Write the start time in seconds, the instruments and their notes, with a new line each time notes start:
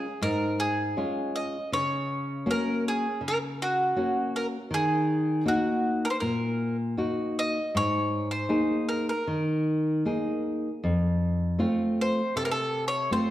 Already playing: mandolin G#4
0.21 nylon-string guitar G#2, mandolin A#4
0.60 mandolin G#4
0.97 nylon-string guitar G#3 C#4 F4
1.36 mandolin D#5
1.72 nylon-string guitar C#3, mandolin C#5
2.46 nylon-string guitar A#3 C#4 F#4
2.51 mandolin A#4
2.88 mandolin G#4
3.21 nylon-string guitar C#3
3.28 mandolin A#4
3.62 mandolin F#4
3.96 nylon-string guitar A#3 C#4 F#4
4.36 mandolin A#4
4.71 nylon-string guitar D#3, mandolin G#4
5.45 nylon-string guitar A#3 D#4 F#4, mandolin F#4
6.05 mandolin A#4
6.10 mandolin C5
6.20 nylon-string guitar A#2, mandolin A#4
6.97 nylon-string guitar A#3 D#4 F#4
7.39 mandolin D#5
7.75 nylon-string guitar G#2, mandolin C#5
8.31 mandolin C5
8.49 nylon-string guitar A#3 D#4 G#4
8.89 mandolin A#4
9.09 mandolin A#4
9.27 nylon-string guitar D#3
10.05 nylon-string guitar A#3 D#4 G#4
10.84 nylon-string guitar F2
11.59 nylon-string guitar A3 C4 F4
12.01 mandolin C5
12.36 nylon-string guitar C3, mandolin A4
12.45 mandolin A#4
12.51 mandolin A4
12.88 mandolin C#5
13.11 nylon-string guitar A3 C4 F4, mandolin C5